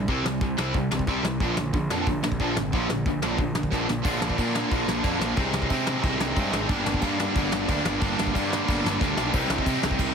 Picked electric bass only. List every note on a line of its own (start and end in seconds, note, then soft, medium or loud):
0.08 0.23 C2 loud
0.24 0.39 C2 medium
0.41 0.56 C2 medium
0.57 0.73 C2 medium
0.75 0.89 C2 loud
0.91 1.06 C2 medium
1.07 1.22 C2 loud
1.23 1.38 C2 loud
1.40 1.55 A#1 loud
1.57 1.72 A#1 medium
1.73 1.88 A#1 loud
1.90 2.05 F2 medium
2.07 2.22 A#1 loud
2.23 2.38 A#1 medium
2.40 2.55 A#1 medium
2.56 2.71 G#1 loud
2.73 2.88 A#1 loud
2.89 3.04 A#1 medium
3.06 3.21 A#1 medium
3.21 3.37 A#1 medium
3.38 3.53 A#1 loud
3.54 3.69 A#1 medium
3.71 3.86 A#1 loud
3.89 4.04 A#1 medium
4.05 4.18 A#1 loud
4.22 4.34 A#1 medium
4.38 4.64 A#2 medium
4.71 4.84 A#1 loud
4.86 4.99 A#1 medium
5.04 5.17 F2 medium
5.19 5.32 A#1 loud
5.37 5.50 C2 loud
5.52 5.65 C2 medium
5.70 5.95 C3 loud
6.03 6.16 C2 loud
6.18 6.32 C2 medium
6.37 6.49 G2 loud
6.51 6.64 G#1 loud
6.69 6.82 G1 loud
6.86 6.98 G1 medium
7.02 7.27 G2 loud
7.35 7.48 G1 loud
7.51 7.64 G1 loud
7.68 7.81 D2 loud
7.85 7.97 G1 loud
8.02 8.14 G1 loud
8.19 8.31 G1 medium
8.35 8.60 G2 medium
8.69 8.81 G1 loud
8.84 8.96 G1 medium
9.01 9.13 D2 medium
9.17 9.29 B1 medium
9.33 9.43 C2 loud
9.50 9.60 C2 loud
9.66 9.76 C3 loud
9.83 9.93 C2 medium
9.99 10.09 C2 loud